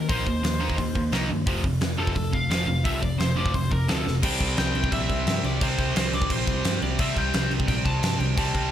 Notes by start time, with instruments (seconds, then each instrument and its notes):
0.09 picked electric bass A#1, overdriven electric guitar D#3 A#3 D#4, lead electric guitar C5, kick, open hi-hat
0.26 picked electric bass D#2, overdriven electric guitar D#3 A#3, kick
0.43 picked electric bass D#2, overdriven electric guitar D#3 A#3, snare, open hi-hat
0.60 overdriven electric guitar D#3 A#3 D#4
0.70 kick
0.78 picked electric bass D#2, overdriven electric guitar D#3 A#3, kick, open hi-hat
0.95 picked electric bass D#2, overdriven electric guitar D#3 A#3, kick
1.12 picked electric bass C2, overdriven electric guitar D#3 A#3 D#4, snare, open hi-hat
1.30 picked electric bass G2, overdriven electric guitar D#3 A#3
1.46 picked electric bass F1, overdriven electric guitar F2 C3 F3, kick, open hi-hat
1.64 picked electric bass F1, overdriven electric guitar F2 C3, kick
1.81 picked electric bass F1, overdriven electric guitar F2 C3, snare, open hi-hat
1.98 picked electric bass F1, overdriven electric guitar F2 C3 F3, lead electric guitar A4
2.07 kick
2.15 picked electric bass F1, overdriven electric guitar F2 C3, kick, open hi-hat
2.33 overdriven electric guitar F2 C3, lead electric guitar F5, kick
2.50 picked electric bass F1, overdriven electric guitar F2 C3 F3, lead electric guitar F5, snare, open hi-hat
2.67 picked electric bass F1, overdriven electric guitar F2 C3
2.84 picked electric bass C2, overdriven electric guitar F2 C3 F3, lead electric guitar E5, kick, open hi-hat
3.02 picked electric bass F1, overdriven electric guitar F2 C3, lead electric guitar D5, kick
3.19 picked electric bass F1, overdriven electric guitar F2 C3, lead electric guitar C5, snare, open hi-hat
3.36 overdriven electric guitar F2 C3 F3, lead electric guitar D5
3.46 kick
3.54 picked electric bass F1, overdriven electric guitar F2 C3, lead electric guitar C5, kick, open hi-hat
3.71 picked electric bass F1, overdriven electric guitar F2 C3, lead electric guitar A#4, kick
3.88 picked electric bass D2, overdriven electric guitar F2 C3 F3, lead electric guitar A4, snare, open hi-hat
4.06 picked electric bass F1, overdriven electric guitar F2 C3, snare
4.23 picked electric bass C2, overdriven electric guitar C3 G3 C4, lead electric guitar G5, kick, crash
4.40 picked electric bass C2, kick, crash
4.57 picked electric bass C2, lead electric guitar G5, snare, crash
4.75 picked electric bass C2, crash
4.84 kick
4.92 picked electric bass A#1, lead electric guitar E5, kick, crash
5.09 picked electric bass C2, kick, crash
5.26 picked electric bass G2, snare, crash
5.44 picked electric bass C2, lead electric guitar D5, crash
5.61 picked electric bass C2, overdriven electric guitar C3 G3 C4, lead electric guitar C5, kick, crash
5.78 picked electric bass C2, kick, crash
5.96 picked electric bass C2, lead electric guitar C5, snare, crash
6.13 picked electric bass C2, lead electric guitar D5, crash
6.22 kick
6.30 picked electric bass A#1, lead electric guitar C5, kick, crash
6.47 picked electric bass C2, kick, crash
6.64 picked electric bass G2, snare, crash
6.82 picked electric bass C2, lead electric guitar D5, crash
6.99 picked electric bass C2, overdriven electric guitar C3 G3 C4, lead electric guitar E5, kick, crash
7.16 picked electric bass C2, lead electric guitar G5, kick, crash
7.34 picked electric bass C2, snare, crash
7.51 picked electric bass C2, crash
7.60 kick
7.68 picked electric bass A#1, lead electric guitar G5, kick, crash
7.85 picked electric bass C2, lead electric guitar A5, kick, crash
8.03 picked electric bass G2, snare, crash
8.20 picked electric bass C2, lead electric guitar G5, crash
8.37 picked electric bass C2, overdriven electric guitar C3 G3 C4, lead electric guitar A5, kick, crash
8.54 picked electric bass C2, kick, crash